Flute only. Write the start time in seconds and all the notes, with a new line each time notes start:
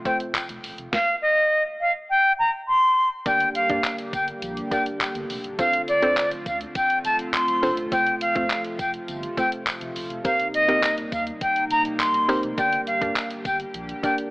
0.06 G5
0.93 F5
1.22 D#5
1.80 F5
2.10 G5
2.39 A#5
2.68 C6
3.26 G5
3.55 F5
4.13 G5
4.71 G5
5.59 F5
5.88 D5
6.46 F5
6.75 G5
7.05 A5
7.34 C6
7.92 G5
8.21 F5
8.79 G5
9.38 G5
10.25 F5
10.54 D#5
11.12 F5
11.41 G5
11.71 A#5
11.99 C6
12.58 G5
12.87 F5
13.45 G5
14.03 G5